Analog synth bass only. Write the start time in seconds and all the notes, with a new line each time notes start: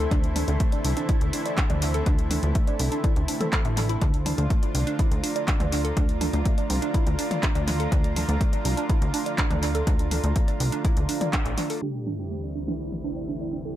0.11 D2
0.48 D2
0.85 C2
1.21 D2
1.70 D2
2.06 D2
2.43 D2
2.79 C2
3.16 D2
3.65 A1
4.01 D2
4.38 D2
4.74 C2
5.11 D2
5.60 D2
5.97 D2
6.33 D2
6.70 C2
7.07 D2
7.55 D2
7.92 D2
8.29 D2
8.65 C2
9.02 D2
9.51 D2
9.87 D2
10.24 D2
10.60 C2
10.97 D2
11.46 A1